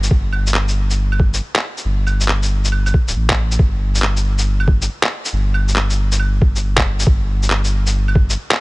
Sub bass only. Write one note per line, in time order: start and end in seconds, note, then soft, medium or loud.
0.11 1.40 G1 loud
1.85 2.93 G1 loud
3.08 3.15 D1 medium
3.16 3.58 A1 medium
3.59 4.88 G1 loud
5.33 6.40 G1 loud
6.41 6.84 G1 medium
6.85 7.05 G1 medium
7.07 8.36 G1 loud